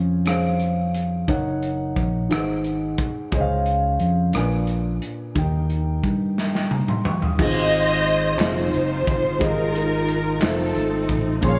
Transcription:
Already playing: F2 C#3 C#4 G#4 C5 F5
0.25 C#4 G#4 C5 F5, cross-stick, closed hi-hat
0.60 closed hi-hat
0.94 closed hi-hat
1.28 F#1 D#4 A#4 C#5 F#5, kick, closed hi-hat
1.63 closed hi-hat
1.96 A#1, kick, closed hi-hat
2.29 G#1 G#2 D#4 G#4 B4 F#5, cross-stick, closed hi-hat
2.37 C5
2.64 closed hi-hat
2.98 kick, closed hi-hat
3.31 C#2 C#3 C#4 G#4 C5 D#5, kick, closed hi-hat
3.40 F5
3.66 closed hi-hat
4.00 F2, closed hi-hat
4.33 A#1 A#2 D4 A#4 B4 G#5, cross-stick, closed hi-hat
4.67 closed hi-hat
5.02 closed hi-hat
5.35 D#2 D#3 D#4 G4 A#4 G5, kick, closed hi-hat
5.70 closed hi-hat
6.03 G2, kick, closed hi-hat
6.38 snare
6.54 G5, snare
6.71 A#5, high tom
6.88 C6, mid tom
7.05 C#6, mid tom
7.22 D#6, floor tom
7.38 G#1 G#2 B3 F4 G#4 C5 D#5, kick, crash
7.42 C4 D#5
7.73 closed hi-hat
8.07 closed hi-hat
8.37 F1 C4 F4 G#4 C5, snare, clap, closed hi-hat
8.42 D#4 F4 C5
8.73 F#1, closed hi-hat
9.07 G1, kick, closed hi-hat
9.39 G#1 G#2 G#3 F4 G4 D#5, kick, closed hi-hat
9.43 D#4 F4 A#4
9.75 closed hi-hat
10.08 closed hi-hat
10.40 F1 A3 D#4 F4 C5, snare, clap, closed hi-hat
10.44 C4 D#4 A4
10.75 G#1, closed hi-hat
11.09 A1, kick, closed hi-hat
11.41 A#1 A#2 A#3 C#4 G#4 C#5 C6, kick, closed hi-hat
11.45 G#4 F5

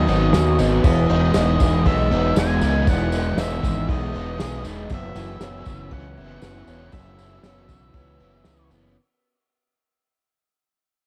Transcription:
Already playing: D#3 F#3 B3 D#4 G#4 D#5
0.06 G#1 B3 D#4, ride, tambourine
0.31 D#2 F#3 G#4, snare, ride, tambourine
0.57 G#1 B3 D#4, ride, tambourine
0.82 E1 E3 B3 D#5, kick, crash, tambourine
1.07 E1 G#3 D#4 G#4, ride
1.34 E1 B3 D#4, snare, ride, tambourine
1.59 E1 E3 G#3 G#4, kick, ride, tambourine
1.84 B1 G#3 B3 D#4 E5, kick, ride
2.10 E1 B3 D#4, ride
2.36 E1 G#3 G#4 G#5, snare, ride, tambourine
2.61 C#2 B3 D#4, ride, tambourine
2.87 E1 E3 B3 F#5, kick, ride, tambourine
3.12 G#3 D#4 G#4, ride, tambourine
3.37 E1 B3 D#4 E5, snare, ride, tambourine
3.63 G#1 E3 G#3 G#4, kick, ride, tambourine
3.88 B1 G#3 B3 D#4 D#5, kick, ride
4.14 E1 B3 D#4, ride
4.39 B1 G#3 G#4, snare, ride, tambourine
4.64 E1 B3 D#4, ride, tambourine
4.89 F#1 F#2 E3, kick, tambourine, crash
4.94 E5
5.15 F#1 E3 E4 F#4, ride, tambourine
5.41 F#1 B3 C#4, snare, ride, tambourine
5.65 F#1 C#3 E3 F#4, kick, ride, tambourine
5.91 C#2 E3 B3 C#4 F#5, kick, ride
6.17 F#1 B3 C#4 E4, ride
6.42 F#1 E3 F#4 F#5, snare, ride, tambourine
6.67 E1 B3 C#4, ride, tambourine
6.92 F#1 F#2 E3 E5, kick, ride, tambourine
7.17 E3 E4 F#4, ride, tambourine
7.42 F#1 B3 C#4, snare, ride, tambourine
7.67 B1 C#3 E3 F#4, kick, ride, tambourine
7.94 C#2 E3 B3 C#4, kick, ride, tambourine
8.18 F#1 B3 C#4 E4, ride, tambourine
8.44 C#2 E3 F#4, snare, ride, tambourine
8.70 F#1 B3 C#4, ride, tambourine

